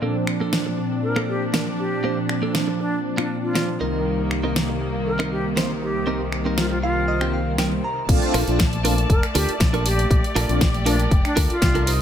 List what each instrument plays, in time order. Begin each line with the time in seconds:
0.01 analog polysynth A#2 F3 C4 D4, string section A#2 D4, clean electric guitar A#3 D4 A4
0.27 finger snap, muted clean electric guitar stroke
0.40 clean electric guitar A#3 D4 A4
0.53 snare
0.66 muted clean electric guitar stroke
0.78 muted clean electric guitar stroke
1.03 flute A#4
1.16 clean electric guitar A#3 D4 A4, finger snap
1.29 flute G4
1.53 clean electric guitar A#3 D4 A#4, snare
1.78 flute G4, muted clean electric guitar stroke
2.04 clean electric guitar A#3 D4 C5
2.29 finger snap, muted clean electric guitar stroke
2.42 clean electric guitar A#3 D4 A4
2.55 snare
2.67 muted clean electric guitar stroke
2.79 flute D4, muted clean electric guitar stroke
3.17 clean electric guitar A#3 D4 F4, flute D4, finger snap
3.43 flute F4
3.55 clean electric guitar A#3 D4 F4, snare
3.79 analog polysynth C2 D#3 G3 A#3, string section C3 D#3 A#3, clean electric guitar C4 D#4 A#4
4.30 finger snap, muted clean electric guitar stroke
4.43 clean electric guitar C4 D#4 A#4
4.56 snare
4.69 muted clean electric guitar stroke
4.81 muted clean electric guitar stroke
5.06 flute A#4
5.19 clean electric guitar C4 D#4 A#4, finger snap
5.31 flute G4
5.56 clean electric guitar C4 D#4 C5, snare
5.82 string section C4, flute G4, muted clean electric guitar stroke
6.07 clean electric guitar C4 D#4 A#4
6.32 finger snap, muted clean electric guitar stroke
6.45 clean electric guitar C4 D#4 A#4
6.58 flute F4, snare
6.71 flute F4, muted clean electric guitar stroke
6.83 flute F4, clean electric guitar F5, muted clean electric guitar stroke
7.08 clean electric guitar D#5
7.21 clean electric guitar C4 D#4 G4, finger snap
7.33 clean electric guitar F5
7.58 clean electric guitar C4 D#4 A#4 G5, snare
7.83 clean electric guitar A#5, muted clean electric guitar stroke
8.09 fingered electric bass A#1, analog polysynth A3 C4 D4 F4, string section A3 D5 A5, kick, closed hi-hat, crash
8.22 closed hi-hat
8.34 fingered electric bass A#1, clean electric guitar D4 F4 A4 A#4, finger snap, open hi-hat
8.47 fingered electric bass A#1, analog polysynth A3 C4 D4 F4, closed hi-hat
8.59 muted clean electric guitar stroke, kick, snare, closed hi-hat
8.73 closed hi-hat
8.84 analog polysynth A3 C4 D4 F4, clean electric guitar D4 F4 A4 A#4, open hi-hat
8.98 closed hi-hat
9.10 fingered electric bass F1, flute A#4, kick, closed hi-hat
9.23 finger snap, closed hi-hat
9.35 fingered electric bass D2, clean electric guitar D4 F4 A4 A#4, flute G4, open hi-hat
9.48 muted fingered electric bass stroke, closed hi-hat
9.60 fingered electric bass A#1, kick, snare, closed hi-hat
9.73 clean electric guitar D4 F4 A4 A#4, closed hi-hat
9.86 flute G4, open hi-hat
9.98 muted clean electric guitar stroke, closed hi-hat
10.11 fingered electric bass A#1, string section G4, kick, closed hi-hat
10.24 closed hi-hat
10.35 fingered electric bass A#1, clean electric guitar D4 F4 A4 A#4, finger snap, open hi-hat
10.49 fingered electric bass A#1, analog polysynth A3 C4 D4 F4, closed hi-hat
10.61 muted clean electric guitar stroke, kick, snare, closed hi-hat
10.74 closed hi-hat
10.86 analog polysynth A3 C4 D4 F4, clean electric guitar D4 F4 A4 A#4, flute D4, open hi-hat
10.99 closed hi-hat
11.11 fingered electric bass F1, kick, closed hi-hat
11.25 flute D4, finger snap, closed hi-hat
11.36 fingered electric bass D2, clean electric guitar D4 F4 A4 A#4, kick, open hi-hat
11.50 flute F4, muted fingered electric bass stroke, closed hi-hat
11.62 fingered electric bass C2, kick, snare, closed hi-hat
11.74 clean electric guitar D4 F4 A4 A#4, closed hi-hat
11.86 string section C4 A#4 D#5, clean electric guitar D#4 G4 A#4 C5, open hi-hat